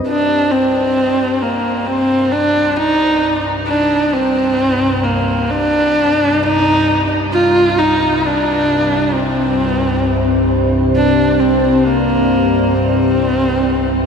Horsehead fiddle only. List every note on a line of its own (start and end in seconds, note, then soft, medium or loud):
0.08 0.53 D4 medium
0.52 1.44 C4 medium
1.42 1.88 A#3 medium
1.87 2.34 C4 medium
2.32 2.77 D4 medium
2.76 3.45 D#4 medium
3.68 4.15 D4 medium
4.13 5.05 C4 medium
5.03 5.52 A#3 medium
5.50 6.44 D4 loud
6.43 7.11 D#4 loud
7.33 7.80 F4 loud
7.78 8.28 D#4 medium
8.26 9.15 D4 medium
9.14 10.51 C4 medium
10.97 11.41 D4 loud
11.40 11.87 C4 medium
11.85 12.76 A#3 medium
12.74 14.06 C4 medium